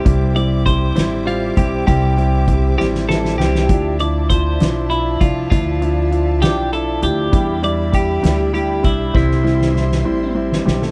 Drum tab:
HH |x-x-x-x-x-x-|x-x-x-------|x-x-x-x-x-x-|x-x-x-x-x-x-|
SD |------o-----|------oooooo|------o-----|------o-----|
BD |o---o-----o-|o---o-------|o---o-----o-|o-----------|

HH |x-x-x-x-x-x-|------------|
SD |------o-----|oooooo---ooo|
BD |o---o-----o-|o-----------|